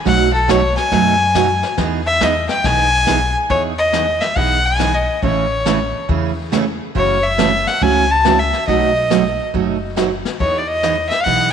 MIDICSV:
0, 0, Header, 1, 5, 480
1, 0, Start_track
1, 0, Key_signature, 4, "major"
1, 0, Tempo, 431034
1, 60, Time_signature, 4, 2, 24, 8
1, 12839, End_track
2, 0, Start_track
2, 0, Title_t, "Fiddle"
2, 0, Program_c, 0, 110
2, 78, Note_on_c, 0, 78, 96
2, 359, Note_off_c, 0, 78, 0
2, 370, Note_on_c, 0, 69, 79
2, 559, Note_on_c, 0, 73, 81
2, 576, Note_off_c, 0, 69, 0
2, 846, Note_off_c, 0, 73, 0
2, 853, Note_on_c, 0, 80, 101
2, 1934, Note_off_c, 0, 80, 0
2, 2297, Note_on_c, 0, 76, 97
2, 2479, Note_on_c, 0, 75, 89
2, 2496, Note_off_c, 0, 76, 0
2, 2765, Note_off_c, 0, 75, 0
2, 2772, Note_on_c, 0, 79, 95
2, 2955, Note_on_c, 0, 80, 110
2, 2972, Note_off_c, 0, 79, 0
2, 3738, Note_off_c, 0, 80, 0
2, 3896, Note_on_c, 0, 73, 87
2, 4037, Note_off_c, 0, 73, 0
2, 4209, Note_on_c, 0, 75, 94
2, 4686, Note_on_c, 0, 76, 84
2, 4703, Note_off_c, 0, 75, 0
2, 4864, Note_on_c, 0, 78, 102
2, 4881, Note_off_c, 0, 76, 0
2, 5184, Note_on_c, 0, 80, 91
2, 5201, Note_off_c, 0, 78, 0
2, 5505, Note_on_c, 0, 75, 78
2, 5521, Note_off_c, 0, 80, 0
2, 5817, Note_off_c, 0, 75, 0
2, 5824, Note_on_c, 0, 73, 79
2, 6737, Note_off_c, 0, 73, 0
2, 7751, Note_on_c, 0, 73, 88
2, 8057, Note_on_c, 0, 76, 99
2, 8074, Note_off_c, 0, 73, 0
2, 8543, Note_on_c, 0, 78, 86
2, 8560, Note_off_c, 0, 76, 0
2, 8713, Note_on_c, 0, 80, 103
2, 8729, Note_off_c, 0, 78, 0
2, 9029, Note_on_c, 0, 81, 94
2, 9046, Note_off_c, 0, 80, 0
2, 9341, Note_on_c, 0, 76, 84
2, 9358, Note_off_c, 0, 81, 0
2, 9649, Note_off_c, 0, 76, 0
2, 9656, Note_on_c, 0, 75, 91
2, 10573, Note_off_c, 0, 75, 0
2, 11576, Note_on_c, 0, 73, 82
2, 11781, Note_on_c, 0, 74, 66
2, 11797, Note_off_c, 0, 73, 0
2, 11882, Note_on_c, 0, 75, 97
2, 11898, Note_off_c, 0, 74, 0
2, 12340, Note_off_c, 0, 75, 0
2, 12347, Note_on_c, 0, 76, 84
2, 12473, Note_on_c, 0, 77, 75
2, 12490, Note_off_c, 0, 76, 0
2, 12511, Note_on_c, 0, 78, 106
2, 12528, Note_off_c, 0, 77, 0
2, 12819, Note_off_c, 0, 78, 0
2, 12839, End_track
3, 0, Start_track
3, 0, Title_t, "Steel-string acoustic guitar"
3, 0, Program_c, 1, 25
3, 55, Note_on_c, 1, 47, 51
3, 60, Note_on_c, 1, 54, 58
3, 63, Note_on_c, 1, 57, 56
3, 63, Note_on_c, 1, 63, 58
3, 68, Note_on_c, 1, 66, 66
3, 303, Note_off_c, 1, 47, 0
3, 306, Note_off_c, 1, 54, 0
3, 307, Note_off_c, 1, 57, 0
3, 307, Note_off_c, 1, 63, 0
3, 309, Note_off_c, 1, 66, 0
3, 536, Note_on_c, 1, 47, 70
3, 538, Note_on_c, 1, 54, 66
3, 543, Note_on_c, 1, 57, 78
3, 545, Note_on_c, 1, 63, 88
3, 550, Note_on_c, 1, 66, 87
3, 668, Note_off_c, 1, 47, 0
3, 669, Note_off_c, 1, 54, 0
3, 671, Note_off_c, 1, 57, 0
3, 672, Note_off_c, 1, 63, 0
3, 675, Note_off_c, 1, 66, 0
3, 1018, Note_on_c, 1, 47, 60
3, 1020, Note_on_c, 1, 54, 66
3, 1023, Note_on_c, 1, 63, 62
3, 1024, Note_on_c, 1, 57, 63
3, 1027, Note_on_c, 1, 66, 73
3, 1264, Note_off_c, 1, 47, 0
3, 1265, Note_off_c, 1, 54, 0
3, 1266, Note_off_c, 1, 63, 0
3, 1267, Note_off_c, 1, 57, 0
3, 1269, Note_off_c, 1, 66, 0
3, 1504, Note_on_c, 1, 47, 70
3, 1505, Note_on_c, 1, 54, 74
3, 1507, Note_on_c, 1, 57, 79
3, 1509, Note_on_c, 1, 63, 74
3, 1512, Note_on_c, 1, 66, 76
3, 1631, Note_off_c, 1, 47, 0
3, 1632, Note_off_c, 1, 54, 0
3, 1633, Note_off_c, 1, 57, 0
3, 1634, Note_off_c, 1, 63, 0
3, 1635, Note_off_c, 1, 66, 0
3, 1973, Note_on_c, 1, 52, 58
3, 1978, Note_on_c, 1, 59, 62
3, 1982, Note_on_c, 1, 63, 63
3, 1985, Note_on_c, 1, 68, 60
3, 2221, Note_off_c, 1, 52, 0
3, 2223, Note_off_c, 1, 59, 0
3, 2226, Note_off_c, 1, 63, 0
3, 2227, Note_off_c, 1, 68, 0
3, 2460, Note_on_c, 1, 52, 82
3, 2466, Note_on_c, 1, 59, 77
3, 2472, Note_on_c, 1, 63, 80
3, 2473, Note_on_c, 1, 68, 74
3, 2589, Note_off_c, 1, 52, 0
3, 2592, Note_off_c, 1, 59, 0
3, 2595, Note_off_c, 1, 63, 0
3, 2595, Note_off_c, 1, 68, 0
3, 2942, Note_on_c, 1, 52, 53
3, 2943, Note_on_c, 1, 59, 61
3, 2948, Note_on_c, 1, 63, 66
3, 2956, Note_on_c, 1, 68, 67
3, 3186, Note_off_c, 1, 52, 0
3, 3186, Note_off_c, 1, 59, 0
3, 3189, Note_off_c, 1, 63, 0
3, 3192, Note_off_c, 1, 68, 0
3, 3408, Note_on_c, 1, 52, 70
3, 3415, Note_on_c, 1, 59, 74
3, 3419, Note_on_c, 1, 63, 72
3, 3421, Note_on_c, 1, 68, 88
3, 3543, Note_off_c, 1, 52, 0
3, 3546, Note_off_c, 1, 59, 0
3, 3548, Note_off_c, 1, 63, 0
3, 3549, Note_off_c, 1, 68, 0
3, 3893, Note_on_c, 1, 52, 57
3, 3897, Note_on_c, 1, 59, 55
3, 3900, Note_on_c, 1, 63, 60
3, 3904, Note_on_c, 1, 68, 63
3, 4141, Note_off_c, 1, 52, 0
3, 4143, Note_off_c, 1, 59, 0
3, 4145, Note_off_c, 1, 63, 0
3, 4146, Note_off_c, 1, 68, 0
3, 4372, Note_on_c, 1, 52, 70
3, 4378, Note_on_c, 1, 59, 70
3, 4378, Note_on_c, 1, 63, 73
3, 4382, Note_on_c, 1, 68, 76
3, 4505, Note_off_c, 1, 52, 0
3, 4508, Note_off_c, 1, 59, 0
3, 4508, Note_off_c, 1, 63, 0
3, 4510, Note_off_c, 1, 68, 0
3, 4856, Note_on_c, 1, 52, 53
3, 4860, Note_on_c, 1, 59, 54
3, 4862, Note_on_c, 1, 68, 62
3, 4864, Note_on_c, 1, 63, 61
3, 5103, Note_off_c, 1, 52, 0
3, 5105, Note_off_c, 1, 59, 0
3, 5106, Note_off_c, 1, 68, 0
3, 5107, Note_off_c, 1, 63, 0
3, 5335, Note_on_c, 1, 52, 70
3, 5341, Note_on_c, 1, 59, 70
3, 5345, Note_on_c, 1, 63, 70
3, 5346, Note_on_c, 1, 68, 74
3, 5467, Note_off_c, 1, 52, 0
3, 5470, Note_off_c, 1, 59, 0
3, 5472, Note_off_c, 1, 63, 0
3, 5472, Note_off_c, 1, 68, 0
3, 5820, Note_on_c, 1, 49, 57
3, 5824, Note_on_c, 1, 52, 60
3, 5825, Note_on_c, 1, 57, 61
3, 5830, Note_on_c, 1, 61, 66
3, 5832, Note_on_c, 1, 68, 63
3, 6065, Note_off_c, 1, 49, 0
3, 6067, Note_off_c, 1, 52, 0
3, 6068, Note_off_c, 1, 57, 0
3, 6070, Note_off_c, 1, 61, 0
3, 6071, Note_off_c, 1, 68, 0
3, 6297, Note_on_c, 1, 49, 78
3, 6300, Note_on_c, 1, 52, 75
3, 6301, Note_on_c, 1, 57, 72
3, 6305, Note_on_c, 1, 61, 78
3, 6306, Note_on_c, 1, 68, 77
3, 6428, Note_off_c, 1, 49, 0
3, 6429, Note_off_c, 1, 52, 0
3, 6430, Note_off_c, 1, 57, 0
3, 6432, Note_off_c, 1, 61, 0
3, 6433, Note_off_c, 1, 68, 0
3, 6776, Note_on_c, 1, 49, 56
3, 6784, Note_on_c, 1, 52, 64
3, 6784, Note_on_c, 1, 57, 57
3, 6784, Note_on_c, 1, 61, 60
3, 6787, Note_on_c, 1, 68, 61
3, 7024, Note_off_c, 1, 49, 0
3, 7027, Note_off_c, 1, 52, 0
3, 7027, Note_off_c, 1, 57, 0
3, 7027, Note_off_c, 1, 61, 0
3, 7029, Note_off_c, 1, 68, 0
3, 7258, Note_on_c, 1, 49, 66
3, 7261, Note_on_c, 1, 52, 69
3, 7261, Note_on_c, 1, 57, 71
3, 7267, Note_on_c, 1, 61, 72
3, 7269, Note_on_c, 1, 68, 82
3, 7389, Note_off_c, 1, 49, 0
3, 7391, Note_off_c, 1, 52, 0
3, 7391, Note_off_c, 1, 57, 0
3, 7393, Note_off_c, 1, 61, 0
3, 7394, Note_off_c, 1, 68, 0
3, 7737, Note_on_c, 1, 49, 60
3, 7739, Note_on_c, 1, 52, 57
3, 7742, Note_on_c, 1, 57, 58
3, 7745, Note_on_c, 1, 61, 62
3, 7748, Note_on_c, 1, 66, 62
3, 7984, Note_off_c, 1, 49, 0
3, 7985, Note_off_c, 1, 52, 0
3, 7987, Note_off_c, 1, 57, 0
3, 7988, Note_off_c, 1, 61, 0
3, 7990, Note_off_c, 1, 66, 0
3, 8218, Note_on_c, 1, 52, 75
3, 8219, Note_on_c, 1, 49, 67
3, 8224, Note_on_c, 1, 57, 76
3, 8229, Note_on_c, 1, 61, 81
3, 8230, Note_on_c, 1, 66, 76
3, 8349, Note_off_c, 1, 49, 0
3, 8349, Note_off_c, 1, 52, 0
3, 8352, Note_off_c, 1, 57, 0
3, 8354, Note_off_c, 1, 61, 0
3, 8355, Note_off_c, 1, 66, 0
3, 8699, Note_on_c, 1, 49, 53
3, 8704, Note_on_c, 1, 52, 56
3, 8708, Note_on_c, 1, 57, 62
3, 8708, Note_on_c, 1, 61, 71
3, 8714, Note_on_c, 1, 66, 65
3, 8945, Note_off_c, 1, 49, 0
3, 8948, Note_off_c, 1, 52, 0
3, 8950, Note_off_c, 1, 57, 0
3, 8950, Note_off_c, 1, 61, 0
3, 8953, Note_off_c, 1, 66, 0
3, 9186, Note_on_c, 1, 49, 63
3, 9190, Note_on_c, 1, 52, 67
3, 9195, Note_on_c, 1, 57, 74
3, 9196, Note_on_c, 1, 61, 70
3, 9196, Note_on_c, 1, 66, 76
3, 9313, Note_off_c, 1, 49, 0
3, 9315, Note_off_c, 1, 52, 0
3, 9318, Note_off_c, 1, 57, 0
3, 9318, Note_off_c, 1, 61, 0
3, 9318, Note_off_c, 1, 66, 0
3, 9668, Note_on_c, 1, 47, 62
3, 9670, Note_on_c, 1, 54, 58
3, 9671, Note_on_c, 1, 57, 52
3, 9674, Note_on_c, 1, 63, 58
3, 9676, Note_on_c, 1, 66, 65
3, 9910, Note_off_c, 1, 47, 0
3, 9911, Note_off_c, 1, 54, 0
3, 9911, Note_off_c, 1, 57, 0
3, 9913, Note_off_c, 1, 63, 0
3, 9913, Note_off_c, 1, 66, 0
3, 10135, Note_on_c, 1, 47, 76
3, 10141, Note_on_c, 1, 54, 70
3, 10143, Note_on_c, 1, 57, 73
3, 10145, Note_on_c, 1, 66, 78
3, 10146, Note_on_c, 1, 63, 69
3, 10268, Note_off_c, 1, 47, 0
3, 10270, Note_off_c, 1, 54, 0
3, 10271, Note_off_c, 1, 57, 0
3, 10272, Note_off_c, 1, 66, 0
3, 10273, Note_off_c, 1, 63, 0
3, 10623, Note_on_c, 1, 47, 58
3, 10629, Note_on_c, 1, 54, 60
3, 10630, Note_on_c, 1, 57, 59
3, 10633, Note_on_c, 1, 63, 64
3, 10635, Note_on_c, 1, 66, 64
3, 10867, Note_off_c, 1, 47, 0
3, 10870, Note_off_c, 1, 54, 0
3, 10870, Note_off_c, 1, 57, 0
3, 10872, Note_off_c, 1, 63, 0
3, 10873, Note_off_c, 1, 66, 0
3, 11096, Note_on_c, 1, 47, 73
3, 11098, Note_on_c, 1, 54, 68
3, 11102, Note_on_c, 1, 57, 66
3, 11103, Note_on_c, 1, 63, 69
3, 11106, Note_on_c, 1, 66, 73
3, 11227, Note_off_c, 1, 47, 0
3, 11228, Note_off_c, 1, 54, 0
3, 11231, Note_off_c, 1, 57, 0
3, 11231, Note_off_c, 1, 63, 0
3, 11233, Note_off_c, 1, 66, 0
3, 11583, Note_on_c, 1, 52, 56
3, 11588, Note_on_c, 1, 59, 51
3, 11591, Note_on_c, 1, 63, 55
3, 11594, Note_on_c, 1, 68, 59
3, 11826, Note_off_c, 1, 52, 0
3, 11829, Note_off_c, 1, 59, 0
3, 11831, Note_off_c, 1, 63, 0
3, 11832, Note_off_c, 1, 68, 0
3, 12062, Note_on_c, 1, 52, 72
3, 12064, Note_on_c, 1, 59, 75
3, 12066, Note_on_c, 1, 63, 72
3, 12068, Note_on_c, 1, 68, 68
3, 12190, Note_off_c, 1, 52, 0
3, 12191, Note_off_c, 1, 59, 0
3, 12192, Note_off_c, 1, 63, 0
3, 12193, Note_off_c, 1, 68, 0
3, 12540, Note_on_c, 1, 52, 58
3, 12546, Note_on_c, 1, 59, 56
3, 12550, Note_on_c, 1, 63, 57
3, 12550, Note_on_c, 1, 68, 68
3, 12784, Note_off_c, 1, 52, 0
3, 12787, Note_off_c, 1, 59, 0
3, 12789, Note_off_c, 1, 63, 0
3, 12790, Note_off_c, 1, 68, 0
3, 12839, End_track
4, 0, Start_track
4, 0, Title_t, "Upright bass"
4, 0, Program_c, 2, 32
4, 66, Note_on_c, 2, 35, 88
4, 831, Note_off_c, 2, 35, 0
4, 1021, Note_on_c, 2, 42, 93
4, 1787, Note_off_c, 2, 42, 0
4, 1982, Note_on_c, 2, 40, 93
4, 2748, Note_off_c, 2, 40, 0
4, 2944, Note_on_c, 2, 35, 88
4, 3709, Note_off_c, 2, 35, 0
4, 3898, Note_on_c, 2, 40, 86
4, 4666, Note_off_c, 2, 40, 0
4, 4859, Note_on_c, 2, 35, 84
4, 5627, Note_off_c, 2, 35, 0
4, 5820, Note_on_c, 2, 33, 79
4, 6588, Note_off_c, 2, 33, 0
4, 6779, Note_on_c, 2, 40, 86
4, 7548, Note_off_c, 2, 40, 0
4, 7744, Note_on_c, 2, 30, 83
4, 8510, Note_off_c, 2, 30, 0
4, 8706, Note_on_c, 2, 37, 90
4, 9471, Note_off_c, 2, 37, 0
4, 9664, Note_on_c, 2, 35, 88
4, 10430, Note_off_c, 2, 35, 0
4, 10621, Note_on_c, 2, 30, 78
4, 11388, Note_off_c, 2, 30, 0
4, 11585, Note_on_c, 2, 40, 90
4, 12350, Note_off_c, 2, 40, 0
4, 12542, Note_on_c, 2, 35, 76
4, 12839, Note_off_c, 2, 35, 0
4, 12839, End_track
5, 0, Start_track
5, 0, Title_t, "Drums"
5, 65, Note_on_c, 9, 36, 20
5, 70, Note_on_c, 9, 25, 57
5, 70, Note_on_c, 9, 38, 51
5, 177, Note_off_c, 9, 36, 0
5, 181, Note_off_c, 9, 38, 0
5, 543, Note_on_c, 9, 36, 20
5, 546, Note_on_c, 9, 38, 74
5, 546, Note_on_c, 9, 44, 65
5, 655, Note_off_c, 9, 36, 0
5, 658, Note_off_c, 9, 38, 0
5, 658, Note_off_c, 9, 44, 0
5, 857, Note_on_c, 9, 38, 46
5, 968, Note_off_c, 9, 38, 0
5, 1022, Note_on_c, 9, 36, 25
5, 1023, Note_off_c, 9, 25, 0
5, 1023, Note_on_c, 9, 25, 56
5, 1023, Note_on_c, 9, 38, 45
5, 1133, Note_off_c, 9, 36, 0
5, 1134, Note_off_c, 9, 38, 0
5, 1501, Note_on_c, 9, 36, 21
5, 1501, Note_on_c, 9, 38, 59
5, 1501, Note_on_c, 9, 44, 60
5, 1612, Note_off_c, 9, 36, 0
5, 1613, Note_off_c, 9, 38, 0
5, 1613, Note_off_c, 9, 44, 0
5, 1813, Note_on_c, 9, 38, 42
5, 1925, Note_off_c, 9, 38, 0
5, 1978, Note_off_c, 9, 25, 0
5, 1978, Note_on_c, 9, 25, 55
5, 1978, Note_on_c, 9, 38, 50
5, 1980, Note_on_c, 9, 36, 25
5, 2089, Note_off_c, 9, 38, 0
5, 2092, Note_off_c, 9, 36, 0
5, 2459, Note_on_c, 9, 38, 67
5, 2459, Note_on_c, 9, 44, 74
5, 2460, Note_on_c, 9, 36, 28
5, 2570, Note_off_c, 9, 38, 0
5, 2570, Note_off_c, 9, 44, 0
5, 2571, Note_off_c, 9, 36, 0
5, 2771, Note_on_c, 9, 38, 49
5, 2882, Note_off_c, 9, 38, 0
5, 2940, Note_on_c, 9, 36, 27
5, 2942, Note_off_c, 9, 25, 0
5, 2942, Note_on_c, 9, 25, 48
5, 2942, Note_on_c, 9, 38, 49
5, 3052, Note_off_c, 9, 36, 0
5, 3053, Note_off_c, 9, 38, 0
5, 3418, Note_on_c, 9, 38, 57
5, 3418, Note_on_c, 9, 44, 55
5, 3419, Note_on_c, 9, 36, 25
5, 3529, Note_off_c, 9, 38, 0
5, 3529, Note_off_c, 9, 44, 0
5, 3531, Note_off_c, 9, 36, 0
5, 3896, Note_off_c, 9, 25, 0
5, 3896, Note_on_c, 9, 25, 49
5, 3898, Note_on_c, 9, 36, 34
5, 4009, Note_off_c, 9, 36, 0
5, 4378, Note_on_c, 9, 38, 69
5, 4378, Note_on_c, 9, 44, 58
5, 4490, Note_off_c, 9, 38, 0
5, 4490, Note_off_c, 9, 44, 0
5, 4691, Note_on_c, 9, 38, 42
5, 4802, Note_off_c, 9, 38, 0
5, 4858, Note_off_c, 9, 25, 0
5, 4858, Note_on_c, 9, 25, 51
5, 4858, Note_on_c, 9, 36, 32
5, 4969, Note_off_c, 9, 36, 0
5, 5340, Note_on_c, 9, 38, 65
5, 5340, Note_on_c, 9, 44, 53
5, 5451, Note_off_c, 9, 38, 0
5, 5451, Note_off_c, 9, 44, 0
5, 5819, Note_on_c, 9, 36, 38
5, 5820, Note_off_c, 9, 25, 0
5, 5820, Note_on_c, 9, 25, 46
5, 5931, Note_off_c, 9, 36, 0
5, 6303, Note_on_c, 9, 38, 69
5, 6303, Note_on_c, 9, 44, 62
5, 6414, Note_off_c, 9, 38, 0
5, 6414, Note_off_c, 9, 44, 0
5, 6781, Note_on_c, 9, 36, 36
5, 6782, Note_off_c, 9, 25, 0
5, 6782, Note_on_c, 9, 25, 47
5, 6893, Note_off_c, 9, 36, 0
5, 7265, Note_on_c, 9, 38, 66
5, 7265, Note_on_c, 9, 44, 60
5, 7376, Note_off_c, 9, 38, 0
5, 7376, Note_off_c, 9, 44, 0
5, 7744, Note_on_c, 9, 36, 33
5, 7745, Note_off_c, 9, 25, 0
5, 7745, Note_on_c, 9, 25, 54
5, 7855, Note_off_c, 9, 36, 0
5, 8226, Note_on_c, 9, 38, 69
5, 8226, Note_on_c, 9, 44, 57
5, 8337, Note_off_c, 9, 38, 0
5, 8337, Note_off_c, 9, 44, 0
5, 8541, Note_on_c, 9, 38, 41
5, 8652, Note_off_c, 9, 38, 0
5, 8703, Note_off_c, 9, 25, 0
5, 8703, Note_on_c, 9, 25, 49
5, 8704, Note_on_c, 9, 36, 31
5, 8815, Note_off_c, 9, 36, 0
5, 9186, Note_on_c, 9, 38, 62
5, 9186, Note_on_c, 9, 44, 51
5, 9297, Note_off_c, 9, 38, 0
5, 9297, Note_off_c, 9, 44, 0
5, 9500, Note_on_c, 9, 38, 35
5, 9611, Note_off_c, 9, 38, 0
5, 9662, Note_off_c, 9, 25, 0
5, 9662, Note_on_c, 9, 25, 56
5, 9664, Note_on_c, 9, 36, 35
5, 9776, Note_off_c, 9, 36, 0
5, 10143, Note_on_c, 9, 38, 69
5, 10143, Note_on_c, 9, 44, 65
5, 10254, Note_off_c, 9, 38, 0
5, 10254, Note_off_c, 9, 44, 0
5, 10620, Note_off_c, 9, 25, 0
5, 10620, Note_on_c, 9, 25, 52
5, 10623, Note_on_c, 9, 36, 32
5, 10735, Note_off_c, 9, 36, 0
5, 11104, Note_on_c, 9, 38, 65
5, 11104, Note_on_c, 9, 44, 59
5, 11215, Note_off_c, 9, 38, 0
5, 11215, Note_off_c, 9, 44, 0
5, 11418, Note_on_c, 9, 38, 41
5, 11529, Note_off_c, 9, 38, 0
5, 11584, Note_on_c, 9, 36, 35
5, 11586, Note_off_c, 9, 25, 0
5, 11586, Note_on_c, 9, 25, 47
5, 11695, Note_off_c, 9, 36, 0
5, 12062, Note_on_c, 9, 38, 70
5, 12062, Note_on_c, 9, 44, 58
5, 12174, Note_off_c, 9, 38, 0
5, 12174, Note_off_c, 9, 44, 0
5, 12375, Note_on_c, 9, 38, 40
5, 12486, Note_off_c, 9, 38, 0
5, 12542, Note_off_c, 9, 25, 0
5, 12542, Note_on_c, 9, 25, 46
5, 12542, Note_on_c, 9, 36, 33
5, 12653, Note_off_c, 9, 36, 0
5, 12839, Note_off_c, 9, 25, 0
5, 12839, End_track
0, 0, End_of_file